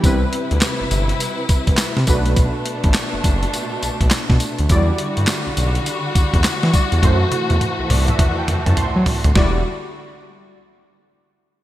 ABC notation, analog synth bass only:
X:1
M:4/4
L:1/16
Q:"Swing 16ths" 1/4=103
K:Em
V:1 name="Analog synth bass" clef=bass
C,,2 z D,, z G,,, G,,,2 z2 C,, C,, z C, B,,,2- | B,,,2 z A,,, z F,,, F,,,2 z2 B,,, B,,, z B,, z D,, | E,,2 z G,, z B,,, B,,,2 z2 E,, E,, z E, z E,, | F,,2 z E,, z C,, C,,2 z2 F,, F,, z F, z D,, |
E,,,2 z12 z2 |]